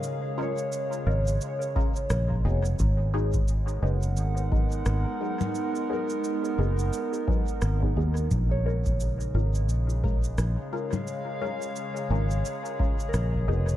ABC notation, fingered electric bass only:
X:1
M:4/4
L:1/8
Q:"Swing 16ths" 1/4=87
K:A#phr
V:1 name="Fingered electric bass" clef=bass
z3 G,,, z2 A,,, E,,, | G,,,3 F,,, G,,,2 G,,, z | z3 F,,, z2 G,,, D,, | A,,,3 G,,, A,,,2 A,,, z |
z3 G,,, z2 A,,, E,,, |]